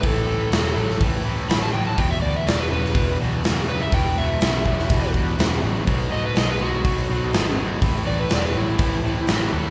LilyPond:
<<
  \new Staff \with { instrumentName = "Electric slide guitar" } { \time 4/4 \key e \minor \tempo 4 = 123 a'2 r4 b''16 a''16 g''16 a''16 | g''16 e''16 d''16 e''16 d''16 b'16 b'4 r4 b'16 e''16 | g''8 e''2 r4. | r8 dis''16 b'16 dis''16 b'16 fis'2 r8 |
r8 d''16 b'16 d''16 b'16 e'2 r8 | }
  \new Staff \with { instrumentName = "Tonewheel organ" } { \time 4/4 \key e \minor <c' e' g' b'>1 | <d' fis' g' b'>1~ | <d' fis' g' b'>1 | <dis' fis' a' c''>1 |
<c' e' g' b'>1 | }
  \new Staff \with { instrumentName = "Distorted electric guitar" } { \clef bass \time 4/4 \key e \minor <a, e>8 <a, e>8 <a, fis>8 <a, fis>8 <a, e>8 <a, e>8 <a, fis>8 <a, fis>8 | <e, b,>8 <e, b,>8 <e, cis>8 <e, cis>8 <e, b,>8 <e, b,>8 <e, cis>8 <e, cis>8 | <e, b,>8 <e, b,>8 <e, cis>8 <e, cis>8 <e, b,>8 <e, b,>8 <e, cis>8 <e, cis>8 | <b, fis>8 <b, fis>8 <b, gis>8 <b, gis>8 <b, fis>8 <b, fis>8 <b, gis>8 <b, gis>8 |
<a, e>8 <a, e>8 <a, fis>8 <a, fis>8 <a, e>8 <a, e>8 <a, fis>8 <a, fis>8 | }
  \new Staff \with { instrumentName = "Picked electric bass" } { \clef bass \time 4/4 \key e \minor a,,8 a,,8 e,,8 a,,8 a,,4 a,,8 a,,8 | e,,8 d,8 e,,8 e,,8 e,,8 e,,8 e,,4 | e,,8 e,,8 b,,8 e,,8 e,,4 e,,8 a,,8 | b,,8 a,8 b,,8 b,,8 b,,8 b,,8 gis,,4 |
a,,8 a,,8 e,,8 a,,8 a,,4 a,,8 dis,8 | }
  \new DrumStaff \with { instrumentName = "Drums" } \drummode { \time 4/4 <hho bd>4 <hho sn>8. sn16 <hho bd>4 <hho sn>4 | <hho bd>4 <hho sn>8. sn16 <hho bd>4 <hho sn>4 | <hho bd>4 <hho sn>8 bd16 sn16 <hho bd>8 bd8 <hho sn>4 | <hho bd>4 <hho sn>4 <hho bd>4 <hho sn>4 |
<hho bd>4 <hho sn>4 <hho bd>4 <hho sn>4 | }
>>